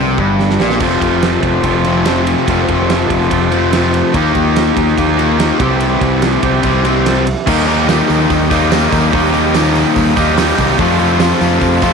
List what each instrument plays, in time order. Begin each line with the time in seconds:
Already playing: fingered electric bass C2, overdriven electric guitar C3, steel-string acoustic guitar G3 B3 D4 G4
0.18 fingered electric bass G1, overdriven electric guitar G2, kick
0.39 steel-string acoustic guitar G3 B3 D4 G4, snare
0.50 snare
0.60 fingered electric bass A#1, overdriven electric guitar A#2, steel-string acoustic guitar G3 B3 D4 G4, snare
0.70 snare
0.80 fingered electric bass F1, overdriven electric guitar F2 C3 F3 A3 C4 F4, steel-string acoustic guitar F3 C4 F4 A4, kick, crash
1.01 fingered electric bass F1, steel-string acoustic guitar C4 F4 A4, kick, ride
1.22 steel-string acoustic guitar F3 C4 F4 A4, snare, ride
1.43 fingered electric bass F1, steel-string acoustic guitar C4 F4 A4, kick, ride
1.64 fingered electric bass F1, overdriven electric guitar F2 C3 F3 A3 C4 F4, kick, ride
1.84 overdriven electric guitar F2 C3 F3, steel-string acoustic guitar C4 F4 A4, ride
2.05 overdriven electric guitar F2 C3 F3, steel-string acoustic guitar F3 C4 F4 A4, snare, ride
2.27 ride
2.46 fingered electric bass F1, overdriven electric guitar F2 C3 F3 A3 C4 F4, steel-string acoustic guitar F3 C4 F4 A4, kick, ride
2.69 fingered electric bass F1, steel-string acoustic guitar C4 F4 A4, kick, ride
2.90 steel-string acoustic guitar F3 C4 F4 A4, snare, ride
3.10 fingered electric bass F1, steel-string acoustic guitar C4 F4 A4, kick, ride
3.22 snare
3.30 fingered electric bass F1, overdriven electric guitar F2 C3 F3 A3 C4 F4, kick, ride
3.51 overdriven electric guitar F2 C3 F3, steel-string acoustic guitar C4 F4 A4, ride
3.72 overdriven electric guitar F2 C3 F3, steel-string acoustic guitar F3 C4 F4 A4, snare, ride
3.94 ride
4.13 fingered electric bass D#2, overdriven electric guitar D#3 A#3 D#4 G4, steel-string acoustic guitar D#3 F3 A#3 F4 G4, kick, ride
4.25 snare
4.35 fingered electric bass D#2, steel-string acoustic guitar A#3 F4 G4, kick, ride
4.55 steel-string acoustic guitar F3 A#3 F4 G4, snare, ride
4.76 fingered electric bass D#2, steel-string acoustic guitar A#3 F4 G4, kick, ride
4.88 snare
4.97 fingered electric bass D#2, overdriven electric guitar D#3 A#3 D#4 G4, kick, ride
5.17 overdriven electric guitar D#3 A#3 D#4, steel-string acoustic guitar A#3 F4 G4, ride
5.38 overdriven electric guitar D#3 A#3 D#4, steel-string acoustic guitar F3 A#3 F4 G4, snare, ride
5.59 fingered electric bass C2, overdriven electric guitar C3 E3 G3 C4 G4, steel-string acoustic guitar C3 A3 C4 E4 G4, kick, ride
5.80 ride
6.00 fingered electric bass C2, steel-string acoustic guitar C4 E4 G4, kick, ride
6.21 steel-string acoustic guitar A3 C4 E4 G4, snare, ride
6.42 fingered electric bass C2, overdriven electric guitar E3 G3 C4 G4, steel-string acoustic guitar C4 E4 G4, kick, ride
6.46 overdriven electric guitar C3
6.63 fingered electric bass C2, overdriven electric guitar C3 G3 C4, kick, ride
6.84 overdriven electric guitar C3 G3 C4, steel-string acoustic guitar C4 E4 G4, ride
7.05 steel-string acoustic guitar A3 C4 E4 G4, snare, ride
7.27 ride
7.46 fingered electric bass D#2, overdriven electric guitar D#3 G3 A#3 D#4 G4, tonewheel organ A#3 D#4 G4 D#5, kick, crash, tambourine
7.67 overdriven electric guitar G3 A#3 D#4, open hi-hat
7.88 overdriven electric guitar D#3 G3 A#3 D#4, snare, open hi-hat, tambourine
8.09 fingered electric bass D#2, overdriven electric guitar G3 A#3 D#4, open hi-hat, tambourine
8.30 fingered electric bass D#2, kick, open hi-hat, tambourine
8.50 fingered electric bass D#2, overdriven electric guitar D#3 G3 A#3 D#4 G4, kick, open hi-hat, tambourine
8.71 overdriven electric guitar D#3 G3 A#3 D#4 G4, snare, open hi-hat, tambourine
8.92 fingered electric bass D#2, kick, open hi-hat, tambourine
9.12 fingered electric bass D#2, overdriven electric guitar D#3 G3 A#3 D#4 G4, kick, open hi-hat, tambourine
9.34 overdriven electric guitar G3 A#3 D#4, open hi-hat
9.54 overdriven electric guitar D#3 G3 A#3 D#4, snare, open hi-hat, tambourine
9.75 overdriven electric guitar G3 A#3 D#4, snare, open hi-hat, tambourine
9.96 fingered electric bass D#2, kick, open hi-hat, tambourine
10.16 fingered electric bass D#2, overdriven electric guitar D#3 G3 A#3 D#4 G4, kick, open hi-hat, tambourine
10.37 overdriven electric guitar D#3 G3 A#3 D#4 G4, snare, open hi-hat, tambourine
10.58 fingered electric bass C2, kick, open hi-hat, tambourine
10.78 overdriven electric guitar F2 C3 F3 A3 C4 F4, fingered electric bass F2, tonewheel organ C4 F4 A4 F5, kick, open hi-hat, tambourine
10.99 overdriven electric guitar A3 C4 F4, open hi-hat
11.20 overdriven electric guitar F3 A3 C4 F4, snare, open hi-hat, tambourine
11.40 fingered electric bass F2, overdriven electric guitar A3 C4 F4, snare, open hi-hat, tambourine
11.61 fingered electric bass F2, kick, open hi-hat, tambourine
11.81 fingered electric bass F2, overdriven electric guitar F2 C3 F3 A3 C4 F4, kick, open hi-hat, tambourine